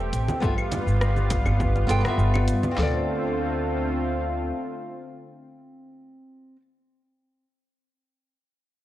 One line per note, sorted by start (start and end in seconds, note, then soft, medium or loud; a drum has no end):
0.00 0.40 A3 medium
0.00 0.39 C4 medium
0.00 0.40 G4 medium
0.13 0.26 A1 medium
0.13 closed hi-hat medium
0.13 shaker medium
0.28 muted conga medium
0.28 high conga medium
0.28 shaker soft
0.40 0.55 G1 loud
0.40 2.75 G3 medium
0.40 0.52 B3 medium
0.40 2.75 B3 medium
0.40 0.53 F4 medium
0.40 2.75 F4 medium
0.40 0.54 A4 medium
0.40 0.54 E5 medium
0.40 kick loud
0.40 shaker soft
0.58 claves medium
0.58 shaker soft
0.71 closed hi-hat medium
0.71 muted conga medium
0.71 high conga medium
0.71 low conga medium
0.71 shaker medium
0.87 1.42 G1 medium
0.87 shaker soft
1.01 cross-stick medium
1.01 shaker soft
1.16 high conga medium
1.16 shaker soft
1.30 kick loud
1.30 closed hi-hat medium
1.30 muted conga medium
1.30 shaker medium
1.45 1.85 G1 loud
1.45 low conga medium
1.45 claves medium
1.45 shaker soft
1.60 kick loud
1.60 high conga medium
1.60 shaker soft
1.75 muted conga medium
1.75 shaker soft
1.87 2.02 G1 loud
1.87 1.99 B3 medium
1.87 2.00 F4 medium
1.87 2.00 A4 medium
1.87 2.01 G5 loud
1.87 closed hi-hat medium
1.87 shaker medium
2.01 2.72 B3 loud
2.01 2.71 F4 medium
2.05 2.75 A4 medium
2.05 2.76 E5 loud
2.05 cross-stick medium
2.05 high conga medium
2.05 shaker soft
2.18 2.49 G1 loud
2.18 shaker soft
2.34 muted conga medium
2.34 claves medium
2.34 shaker soft
2.47 2.61 G2 medium
2.47 closed hi-hat loud
2.47 shaker medium
2.63 high conga loud
2.63 shaker soft
2.71 6.56 C4 medium
2.71 6.58 F4 medium
2.77 4.50 D2 loud
2.77 5.89 D3 medium
2.77 5.89 A3 medium
2.77 5.89 C4 medium
2.77 5.89 F4 medium
2.77 6.60 A4 medium
2.77 snare loud
2.77 clap medium
2.77 floor tom loud
2.83 6.62 D5 medium